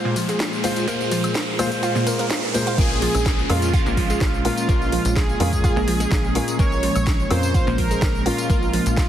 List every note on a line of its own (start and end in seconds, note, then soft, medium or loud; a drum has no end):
0.00 0.61 A#2 loud
0.00 2.74 A#2 medium
0.00 0.61 G#3 medium
0.00 2.74 A#3 medium
0.00 0.61 F4 medium
0.00 2.74 F4 medium
0.00 2.74 G#4 medium
0.00 0.61 C5 loud
0.00 0.84 C6 medium
0.00 riser medium
0.05 0.08 A#2 loud
0.16 0.21 F3 medium
0.16 kick medium
0.16 open hi-hat loud
0.16 tambourine medium
0.29 0.33 G#3 medium
0.29 closed hi-hat medium
0.29 tambourine soft
0.40 kick loud
0.40 snare loud
0.40 closed hi-hat medium
0.40 tambourine soft
0.53 tambourine soft
0.64 0.85 A#2 medium
0.64 0.85 G#3 medium
0.64 0.71 F4 medium
0.64 0.85 F4 medium
0.64 0.85 C5 loud
0.64 open hi-hat loud
0.64 tambourine medium
0.76 closed hi-hat medium
0.76 tambourine soft
0.88 1.56 A#2 medium
0.88 1.56 G#3 medium
0.88 0.91 A#3 loud
0.88 1.56 F4 medium
0.88 2.76 A#4 medium
0.88 kick loud
0.88 closed hi-hat medium
0.88 tambourine soft
1.01 tambourine soft
1.11 1.16 F3 medium
1.11 open hi-hat loud
1.11 tambourine medium
1.24 closed hi-hat medium
1.24 tambourine soft
1.24 high woodblock medium
1.35 kick loud
1.35 snare loud
1.35 closed hi-hat medium
1.35 tambourine soft
1.59 2.52 A#2 loud
1.59 2.52 G#3 medium
1.59 2.52 F4 medium
1.59 1.67 F4 medium
1.59 2.52 C5 loud
1.59 open hi-hat loud
1.59 tambourine medium
1.59 high woodblock medium
1.72 kick medium
1.72 closed hi-hat medium
1.72 tambourine soft
1.83 1.90 F4 loud
1.83 kick loud
1.83 closed hi-hat medium
1.83 tambourine soft
1.95 1.98 A#2 loud
1.95 tambourine soft
2.07 2.12 A#3 medium
2.07 open hi-hat loud
2.07 tambourine medium
2.19 2.22 A#3 medium
2.19 closed hi-hat medium
2.19 tambourine soft
2.30 kick loud
2.30 snare loud
2.30 closed hi-hat medium
2.30 tambourine soft
2.44 tambourine soft
2.54 2.76 A#2 medium
2.54 2.76 G#3 medium
2.54 2.59 A#3 medium
2.54 2.76 F4 medium
2.54 2.76 C5 loud
2.54 open hi-hat loud
2.54 tambourine medium
2.67 2.74 F4 medium
2.67 closed hi-hat medium
2.67 tambourine soft
2.78 3.08 A#1 loud
2.78 3.47 A#2 medium
2.78 3.47 G#3 medium
2.78 9.09 G#3 medium
2.78 2.81 A#3 loud
2.78 9.09 A#3 medium
2.78 9.09 C#4 medium
2.78 3.47 C#4 medium
2.78 3.41 G#4 loud
2.78 3.47 A#4 medium
2.78 kick loud
2.78 closed hi-hat medium
2.78 crash loud
2.78 tambourine medium
2.78 downlifter medium
2.91 tambourine soft
3.02 3.07 F3 medium
3.02 open hi-hat loud
3.15 3.44 A#1 loud
3.15 closed hi-hat medium
3.15 tambourine medium
3.15 high woodblock medium
3.26 kick loud
3.26 snare loud
3.26 closed hi-hat medium
3.26 tambourine medium
3.39 tambourine soft
3.50 3.80 F2 medium
3.50 4.42 A#2 loud
3.50 4.42 G#3 medium
3.50 4.42 C#4 medium
3.50 3.57 F4 medium
3.50 3.93 F4 medium
3.50 4.42 A#4 loud
3.50 open hi-hat loud
3.50 high woodblock medium
3.62 closed hi-hat medium
3.62 tambourine medium
3.73 3.81 F4 loud
3.73 kick loud
3.73 closed hi-hat medium
3.73 tambourine medium
3.86 4.15 A#1 loud
3.86 3.89 A#2 loud
3.86 tambourine soft
3.97 4.02 F3 medium
3.97 4.40 F4 medium
3.97 kick medium
3.97 open hi-hat loud
4.10 4.14 G#3 medium
4.10 closed hi-hat medium
4.10 tambourine medium
4.21 4.51 A#1 medium
4.21 kick loud
4.21 snare loud
4.21 closed hi-hat medium
4.21 tambourine medium
4.34 tambourine soft
4.45 4.66 A#2 medium
4.45 4.66 G#3 medium
4.45 4.66 C#4 medium
4.45 5.07 F4 loud
4.45 4.52 F4 medium
4.45 4.66 A#4 loud
4.45 open hi-hat loud
4.57 closed hi-hat medium
4.57 tambourine medium
4.69 4.99 A#1 loud
4.69 5.37 A#2 medium
4.69 5.37 G#3 medium
4.69 4.72 A#3 loud
4.69 5.37 C#4 medium
4.69 5.37 A#4 medium
4.69 kick loud
4.69 closed hi-hat medium
4.69 tambourine medium
4.82 tambourine soft
4.92 4.97 F3 medium
4.92 open hi-hat loud
5.05 5.35 A#1 loud
5.05 closed hi-hat medium
5.05 tambourine medium
5.16 6.50 G#4 loud
5.16 kick loud
5.16 snare loud
5.16 closed hi-hat medium
5.16 tambourine medium
5.29 tambourine soft
5.40 5.70 F2 medium
5.40 6.33 A#2 loud
5.40 6.33 G#3 medium
5.40 6.33 C#4 medium
5.40 5.48 F4 medium
5.40 6.33 A#4 loud
5.40 open hi-hat loud
5.53 kick medium
5.53 closed hi-hat medium
5.53 tambourine medium
5.64 5.71 F4 loud
5.64 kick loud
5.64 closed hi-hat soft
5.64 tambourine medium
5.76 6.06 A#1 loud
5.76 5.79 A#2 loud
5.76 tambourine soft
5.88 5.93 F3 medium
5.88 open hi-hat loud
6.00 6.05 G#3 medium
6.00 closed hi-hat medium
6.00 tambourine medium
6.11 6.42 A#1 medium
6.11 kick loud
6.11 snare loud
6.11 closed hi-hat medium
6.11 tambourine medium
6.25 tambourine soft
6.35 6.57 A#2 medium
6.35 6.57 G#3 medium
6.35 6.57 C#4 medium
6.35 6.43 F4 medium
6.35 6.57 A#4 loud
6.35 open hi-hat loud
6.48 closed hi-hat medium
6.48 tambourine medium
6.59 6.89 A#1 loud
6.59 7.28 A#2 medium
6.59 7.28 G#3 medium
6.59 6.62 A#3 loud
6.59 7.28 C#4 medium
6.59 7.28 A#4 medium
6.59 7.22 C#5 loud
6.59 kick loud
6.59 closed hi-hat medium
6.59 tambourine medium
6.72 tambourine soft
6.83 6.88 F3 medium
6.83 open hi-hat loud
6.96 7.25 A#1 loud
6.96 closed hi-hat medium
6.96 tambourine medium
6.96 high woodblock medium
7.07 kick loud
7.07 snare loud
7.07 closed hi-hat soft
7.07 tambourine medium
7.20 tambourine soft
7.31 7.61 F2 medium
7.31 8.23 A#2 loud
7.31 8.23 G#3 medium
7.31 8.23 C#4 medium
7.31 7.38 F4 medium
7.31 8.23 A#4 loud
7.31 7.74 C5 medium
7.31 open hi-hat loud
7.31 high woodblock medium
7.43 closed hi-hat medium
7.43 tambourine medium
7.54 7.62 F4 loud
7.54 kick loud
7.54 closed hi-hat soft
7.54 tambourine soft
7.67 7.97 A#1 loud
7.67 7.70 A#2 loud
7.67 tambourine soft
7.78 7.83 F3 medium
7.78 8.21 A#4 medium
7.78 kick medium
7.78 open hi-hat loud
7.91 7.95 G#3 medium
7.91 closed hi-hat medium
7.91 tambourine medium
8.02 8.32 A#1 medium
8.02 kick loud
8.02 snare loud
8.02 closed hi-hat medium
8.02 tambourine medium
8.15 tambourine soft
8.26 8.47 A#2 medium
8.26 8.47 G#3 medium
8.26 8.47 C#4 medium
8.26 8.33 F4 medium
8.26 8.88 F4 loud
8.26 8.47 A#4 loud
8.26 open hi-hat loud
8.38 closed hi-hat medium
8.38 tambourine medium
8.50 8.80 A#1 loud
8.50 9.09 A#2 medium
8.50 8.53 A#3 loud
8.50 kick loud
8.50 closed hi-hat medium
8.50 tambourine medium
8.63 tambourine soft
8.73 8.78 F3 medium
8.73 open hi-hat loud
8.86 9.09 A#1 loud
8.86 closed hi-hat medium
8.86 tambourine medium
8.97 9.09 F4 loud
8.97 kick loud
8.97 snare loud
8.97 closed hi-hat soft
8.97 tambourine medium